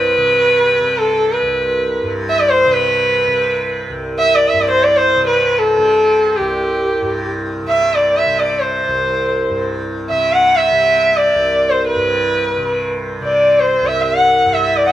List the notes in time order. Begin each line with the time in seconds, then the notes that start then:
Already playing: C2 G2 C3 B4
0.17 C3
0.80 C3
1.00 A4
1.32 B4
1.42 C2
2.03 G2
2.29 E5
2.40 D5
2.50 C5
2.66 C3
2.74 B4
3.28 C3
3.90 C2
4.19 E5
4.35 D5
4.48 E5
4.54 G2
4.61 D5
4.71 C5
4.83 D5
4.97 C5
5.16 C3
5.27 B4
5.58 A4
5.78 C3
6.36 C2 G4
7.02 G2
7.63 C3
7.68 E5
7.95 D5
8.17 E5
8.26 C3
8.39 D5
8.60 C5
8.88 C2
9.50 G2
10.09 C3 E5
10.33 F#5
10.56 E5
10.72 C3
11.17 D5
11.35 C2
11.70 C5
11.87 B4
11.96 G2
12.58 C3
13.21 C3 D5
13.60 C5
13.81 C2
13.87 E5
14.02 F#5
14.45 G2
14.53 E5
14.77 D5
14.85 E5 F#5